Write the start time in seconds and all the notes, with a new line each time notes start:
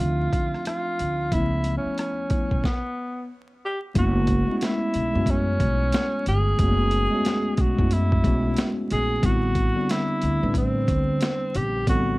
Already playing: F3 A3 C4 D4 D#4 E4 F4 G4 E5
0.01 D2
0.33 D2, kick, closed hi-hat
0.55 cross-stick
0.65 F4, cross-stick, closed hi-hat
0.99 D2, closed hi-hat
1.31 C#2 E3 A3 B3 C#4 E4, kick, closed hi-hat
1.35 F3 E4
1.64 closed hi-hat
1.77 C#4
1.85 muted upright bass stroke
1.98 C#4, cross-stick, closed hi-hat
2.29 F3 A3 B3 C#4, muted upright bass stroke, kick, closed hi-hat
2.34 E4
2.51 B1, kick
2.64 B3, kick, snare
3.65 G4
3.95 F#1 G#3 A3 B3 C#4 F#4, kick, closed hi-hat
3.99 E4
4.27 kick, closed hi-hat
4.47 G#3 A3 B3 C#4
4.52 E4
4.58 F#4, closed hi-hat
4.63 E4, snare
4.94 B1, closed hi-hat
5.13 F#2 G#3 A3 B3 C#4
5.17 F#4
5.26 C#4, kick, closed hi-hat
5.60 B1, kick, closed hi-hat
5.93 snare, closed hi-hat
6.26 G1 G#4, closed hi-hat
6.58 F#1 G#3 A3 B3 C#4, kick, closed hi-hat
6.63 F#4
6.91 closed hi-hat
7.11 G#3 A3 B3 C#4
7.15 F#4
7.25 snare, closed hi-hat
7.55 B1 G#4, kick, closed hi-hat
7.61 F#4
7.77 F#2 G#3 A3 B3 C#4, kick
7.81 E4
7.91 E4, closed hi-hat
8.12 kick
8.23 B1 G#3 A3 B3 C#4, kick, closed hi-hat
8.27 F#4
8.56 snare, closed hi-hat
8.90 A#1 G#4, closed hi-hat
9.22 A1 D3 G3 B3 C4 F#4, kick, closed hi-hat
9.26 E4
9.55 kick, closed hi-hat
9.75 D3 G3 B3 C4
9.80 D4
9.89 E4, snare, closed hi-hat
10.22 D2, closed hi-hat
10.41 A2 D3 G3 C4 B4
10.45 D4
10.54 C4, kick, closed hi-hat
10.88 D2, kick, closed hi-hat
11.21 snare, closed hi-hat
11.55 A#1 G4, closed hi-hat
11.86 A1 D3 G3 B3 C4 F#4, kick, closed hi-hat
11.90 A4